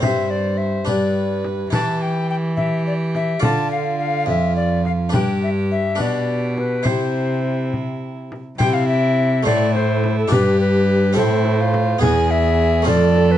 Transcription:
0.00 0.87 G2 medium
0.00 0.84 G2 soft
0.00 0.84 C4 soft
0.00 0.85 C5 soft
0.00 0.90 C5 medium
0.00 0.32 E5 medium
0.00 frame drum medium
0.30 0.59 D5 medium
0.58 0.87 E5 medium
0.85 1.71 G2 medium
0.85 1.68 G2 medium
0.85 1.69 D4 soft
0.85 1.69 B4 soft
0.85 1.73 B4 medium
0.85 1.44 D5 medium
0.85 frame drum soft
1.44 frame drum soft
1.70 3.39 E3 medium
1.70 3.37 E4 soft
1.70 2.56 G4 medium
1.70 3.38 B4 soft
1.70 2.04 A5 medium
1.70 frame drum medium
2.02 2.29 G5 medium
2.30 2.36 G5 medium
2.57 3.46 G4 medium
2.57 2.85 E5 medium
2.57 frame drum soft
2.87 2.93 D5 medium
3.15 3.42 E5 medium
3.15 frame drum soft
3.40 4.23 D3 medium
3.40 4.29 D3 medium
3.40 5.08 F4 soft
3.40 5.08 D5 soft
3.40 3.70 A5 medium
3.40 frame drum medium
3.44 5.14 F4 medium
3.71 3.98 F5 medium
3.99 4.27 F5 medium
4.26 5.08 F2 soft
4.26 5.14 F2 medium
4.26 4.56 E5 medium
4.26 frame drum soft
4.56 4.84 D5 medium
4.85 4.92 F5 medium
4.85 frame drum soft
5.09 5.95 G2 medium
5.09 6.01 G2 medium
5.09 5.94 D4 soft
5.09 5.95 B4 soft
5.14 5.98 G4 medium
5.14 5.42 G5 medium
5.14 frame drum medium
5.43 5.49 E5 medium
5.71 6.03 E5 medium
5.95 6.81 B2 soft
5.95 6.88 B2 medium
5.95 6.81 D4 soft
5.95 6.82 B4 soft
6.00 6.88 G4 medium
6.00 6.58 D5 medium
6.00 frame drum soft
6.58 6.88 B4 medium
6.58 frame drum soft
6.83 8.35 C3 soft
6.83 8.40 C3 medium
6.83 8.54 E4 soft
6.83 8.40 E4 medium
6.83 8.55 C5 soft
6.83 7.73 C5 medium
6.83 frame drum medium
7.74 frame drum soft
8.32 frame drum soft
8.58 9.48 C3 medium
8.58 9.42 C3 medium
8.58 9.43 E4 medium
8.58 9.42 E4 medium
8.58 9.43 C5 medium
8.58 8.75 G5 loud
8.58 frame drum medium
8.74 8.87 F5 medium
8.88 9.44 E5 medium
9.43 10.30 A2 medium
9.43 10.28 A2 medium
9.43 10.27 A3 medium
9.43 10.28 E4 medium
9.43 10.34 E4 medium
9.43 10.29 C5 medium
9.43 9.73 D5 loud
9.47 frame drum medium
9.74 10.16 C5 medium
9.74 frame drum soft
10.04 frame drum medium
10.18 10.33 A4 medium
10.28 11.18 G2 medium
10.28 11.13 G2 medium
10.28 11.12 D4 medium
10.28 11.13 G4 medium
10.28 10.60 B4 loud
10.28 11.13 D5 medium
10.32 11.19 G4 medium
10.32 frame drum medium
10.60 11.16 B4 medium
11.13 12.01 A2 medium
11.13 11.98 A2 medium
11.13 11.97 C4 medium
11.13 11.98 A4 medium
11.13 12.00 C5 loud
11.13 11.98 E5 medium
11.17 11.62 E4 medium
11.17 frame drum medium
11.45 frame drum soft
11.60 12.01 F4 medium
11.74 frame drum medium
11.99 12.88 E2 medium
11.99 12.83 E2 medium
11.99 12.83 B3 medium
11.99 12.83 E4 medium
11.99 12.84 G#4 medium
11.99 12.90 G#4 medium
11.99 12.32 G#5 loud
11.99 frame drum medium
12.31 12.87 E5 loud
12.82 13.38 F2 medium
12.82 13.38 A3 medium
12.82 13.38 C4 medium
12.82 13.38 F4 medium
12.86 13.38 F2 medium
12.86 13.38 A4 medium
12.86 13.33 D5 loud
12.86 frame drum medium
13.16 frame drum soft
13.31 13.38 B4 loud

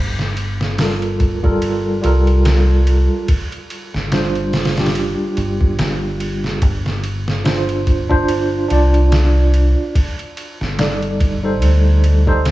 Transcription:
0.00 2.00 G1 medium
0.19 snare soft
0.37 ride medium
0.61 snare medium
0.78 1.38 G3 medium
0.78 1.38 F4 medium
0.78 1.39 A4 medium
0.78 1.39 A#4 medium
0.78 snare loud
0.78 open hi-hat medium
1.02 ride soft
1.20 kick medium
1.20 ride medium
1.43 1.99 G3 medium
1.43 1.99 F4 medium
1.43 2.00 A4 medium
1.43 2.00 A#4 medium
1.43 kick medium
1.62 ride medium
2.02 3.06 C2 medium
2.02 3.26 G3 medium
2.02 3.26 F4 medium
2.02 3.27 A4 medium
2.02 ride medium
2.06 3.28 A#4 medium
2.27 ride soft
2.45 snare loud
2.45 ride medium
2.87 ride medium
3.28 kick loud
3.28 ride medium
3.52 ride soft
3.70 ride medium
3.94 5.15 G1 medium
3.94 snare soft
4.11 4.71 G3 medium
4.11 4.72 D4 medium
4.11 4.72 F4 medium
4.11 4.72 C5 medium
4.11 snare loud
4.11 ride medium
4.35 ride soft
4.53 snare medium
4.53 open hi-hat medium
4.65 snare medium
4.65 open hi-hat medium
4.75 6.59 G3 medium
4.75 6.59 D4 medium
4.75 6.60 F4 medium
4.75 snare medium
4.75 open hi-hat medium
4.79 6.61 G4 medium
4.86 snare medium
4.86 open hi-hat medium
4.95 ride medium
5.37 5.75 G1 medium
5.37 ride medium
5.61 kick medium
5.79 6.59 G1 medium
5.79 snare loud
5.79 ride medium
6.20 ride medium
6.44 snare soft
6.62 8.67 G1 medium
6.62 kick loud
6.62 ride medium
6.86 snare soft
7.04 ride medium
7.28 snare medium
7.44 8.05 D4 medium
7.44 8.05 F4 medium
7.44 8.05 C5 medium
7.44 snare loud
7.44 open hi-hat medium
7.69 ride soft
7.87 kick medium
7.87 ride medium
8.09 8.65 D4 loud
8.09 8.66 F4 medium
8.09 8.66 C5 loud
8.09 kick medium
8.28 ride medium
8.68 9.73 C2 medium
8.68 9.92 D4 medium
8.68 9.93 F4 medium
8.68 ride medium
8.72 9.94 D5 medium
8.94 ride soft
9.12 snare loud
9.12 ride medium
9.54 ride medium
9.95 kick loud
9.95 ride medium
10.19 ride soft
10.37 ride medium
10.61 11.62 G1 medium
10.61 snare soft
10.78 11.38 G3 medium
10.78 11.38 D#4 medium
10.78 11.39 A4 medium
10.78 11.39 D5 medium
10.78 snare loud
10.78 ride medium
11.02 ride soft
11.20 kick medium
11.20 ride medium
11.43 12.22 G3 medium
11.43 12.23 D#4 medium
11.43 12.23 A4 medium
11.43 12.23 C5 medium
11.62 12.51 D2 medium
11.62 ride medium
12.04 ride medium
12.26 12.44 G3 loud
12.26 12.45 D#4 medium
12.26 12.45 A4 medium
12.26 12.45 C5 loud
12.26 kick medium
12.45 snare loud
12.45 ride medium

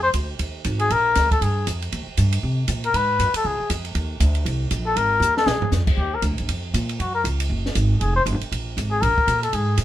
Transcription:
0.00 0.13 F2 medium
0.00 0.10 C5 medium
0.14 0.39 D2 medium
0.14 kick soft
0.14 hi-hat pedal medium
0.14 ride medium
0.39 0.64 D#2 medium
0.39 kick soft
0.39 ride medium
0.64 0.90 G#1 medium
0.64 kick soft
0.64 hi-hat pedal soft
0.64 ride medium
0.80 0.94 G#4 medium
0.80 ride soft
0.90 1.15 A#1 medium
0.90 1.31 A#4 medium
0.90 kick soft
0.90 ride medium
1.15 1.41 D2 medium
1.15 kick soft
1.15 snare soft
1.15 hi-hat pedal soft
1.15 ride medium
1.31 1.44 A4 medium
1.31 kick soft
1.31 ride soft
1.41 1.66 G2 medium
1.41 1.67 G#4 medium
1.41 kick soft
1.41 ride medium
1.67 1.92 F2 medium
1.67 kick soft
1.67 hi-hat pedal medium
1.67 ride medium
1.82 ride soft
1.92 2.06 D#2 medium
1.92 kick soft
1.92 ride medium
2.07 muted upright bass stroke soft
2.17 2.42 G2 medium
2.17 kick soft
2.17 hi-hat pedal medium
2.17 ride medium
2.33 ride medium
2.43 2.68 C3 medium
2.43 kick soft
2.68 2.93 A#2 medium
2.68 kick soft
2.68 hi-hat pedal medium
2.68 ride medium
2.84 2.97 A#4 medium
2.84 ride soft
2.94 3.18 G#2 medium
2.94 3.35 B4 medium
2.94 kick soft
2.94 ride medium
3.19 3.33 F#2 medium
3.19 kick soft
3.19 hi-hat pedal soft
3.19 ride medium
3.34 3.48 A4 medium
3.34 muted upright bass stroke soft
3.34 ride medium
3.44 3.58 C#2 medium
3.44 3.71 G#4 medium
3.44 kick soft
3.60 muted upright bass stroke soft
3.70 3.94 F2 medium
3.70 kick soft
3.70 hi-hat pedal medium
3.70 ride medium
3.85 ride soft
3.95 4.20 D#2 medium
3.95 kick soft
3.95 ride medium
4.20 4.45 D2 medium
4.20 kick soft
4.20 hi-hat pedal soft
4.20 ride medium
4.35 ride soft
4.45 4.70 C2 medium
4.45 kick soft
4.45 ride medium
4.71 4.96 A#1 medium
4.71 kick soft
4.71 hi-hat pedal medium
4.71 ride medium
4.87 4.99 A4 medium
4.96 5.19 G#1 medium
4.96 5.37 A#4 medium
4.96 kick soft
4.96 ride medium
5.20 5.46 D#2 medium
5.20 hi-hat pedal medium
5.37 5.48 A4 medium
5.37 snare soft
5.46 5.60 A#1 medium
5.46 5.72 G#4 medium
5.46 snare medium
5.60 muted upright bass stroke soft
5.60 floor tom medium
5.72 5.97 F2 medium
5.72 snare soft
5.72 hi-hat pedal medium
5.87 kick medium
5.87 crash medium
5.97 6.22 D#2 medium
5.97 6.16 G4 medium
5.97 kick soft
6.14 6.24 A#4 medium
6.22 6.33 D2 medium
6.22 kick soft
6.22 hi-hat pedal medium
6.22 ride medium
6.31 6.39 A#1 soft
6.38 6.48 G1 medium
6.38 ride soft
6.48 6.73 F2 medium
6.48 kick soft
6.48 ride medium
6.74 6.99 A#2 medium
6.74 kick soft
6.74 hi-hat pedal medium
6.74 ride medium
6.89 ride soft
7.00 7.24 F#2 medium
7.00 7.14 F#4 medium
7.00 kick soft
7.00 ride soft
7.15 7.24 A#4 medium
7.24 7.49 C#2 medium
7.24 kick soft
7.24 hi-hat pedal medium
7.24 ride medium
7.40 ride medium
7.50 7.74 F#1 medium
7.50 kick soft
7.66 snare soft
7.75 8.00 G#1 medium
7.75 kick soft
7.75 hi-hat pedal medium
7.75 ride medium
8.01 8.25 F1 medium
8.01 8.15 G#4 medium
8.01 kick soft
8.01 ride soft
8.16 8.22 C5 medium
8.26 8.40 G1 medium
8.26 kick soft
8.26 hi-hat pedal soft
8.26 ride medium
8.41 muted upright bass stroke soft
8.41 ride soft
8.52 8.76 A#1 medium
8.52 kick soft
8.52 ride medium
8.77 9.01 G#1 medium
8.77 kick soft
8.77 hi-hat pedal medium
8.77 ride medium
8.91 9.03 G#4 medium
9.02 9.16 A#1 medium
9.02 9.42 A#4 medium
9.02 kick soft
9.02 ride medium
9.17 muted upright bass stroke soft
9.17 kick soft
9.27 9.52 A#2 medium
9.27 kick soft
9.27 hi-hat pedal medium
9.27 ride medium
9.43 9.56 A4 medium
9.43 ride soft
9.53 9.77 G#2 medium
9.53 9.79 G#4 medium
9.53 kick soft
9.53 ride medium
9.78 9.84 F2 medium
9.78 kick soft
9.78 hi-hat pedal soft
9.78 ride medium

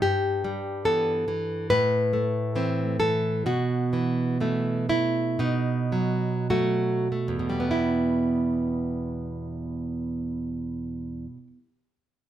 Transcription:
0.02 1.67 G2 medium
0.02 0.82 G4 loud
0.44 1.12 G3 medium
0.85 1.24 E3 medium
0.85 1.24 B3 medium
0.85 1.67 A4 medium
1.28 1.71 E3 medium
1.70 3.42 A2 medium
1.70 2.96 B4 loud
2.13 2.83 A3 medium
2.56 2.96 E3 medium
2.56 2.97 C4 medium
2.99 3.46 E3 medium
2.99 3.44 A4 medium
3.46 5.37 B2 medium
3.46 4.86 F#4 medium
3.93 4.39 E3 medium
4.41 4.86 E3 soft
4.41 4.86 A3 medium
4.89 5.41 A3 medium
4.89 5.39 E4 medium
5.39 7.38 B2 medium
5.39 6.47 D#4 medium
5.92 6.49 F#3 medium
6.50 7.07 F#3 medium
6.50 7.07 A3 medium
6.50 7.67 F#4 medium
7.12 7.72 A3 soft
7.28 11.26 E2 medium
7.39 11.37 B2 medium
7.50 11.47 G3 medium
7.60 11.57 B3 medium
7.71 11.68 E4 medium

